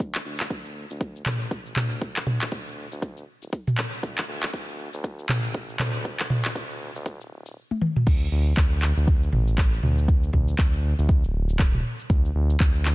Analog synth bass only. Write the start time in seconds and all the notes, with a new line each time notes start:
0.00 D2
0.25 D2
0.50 D2
0.91 D2
1.26 A1
1.76 D2
2.27 D2
2.52 D2
2.92 D2
3.43 D1
4.03 D2
4.28 D2
4.53 D2
4.94 D2
5.29 A1
5.80 D2
6.30 D2
6.55 D2
6.95 D2
7.20 D1
8.07 D2
8.32 D2
8.57 D2
8.97 D2
9.33 A1
9.83 D2
10.33 D2
10.59 D2
10.99 D2
11.24 D1
12.10 D2
12.35 D2
12.60 D2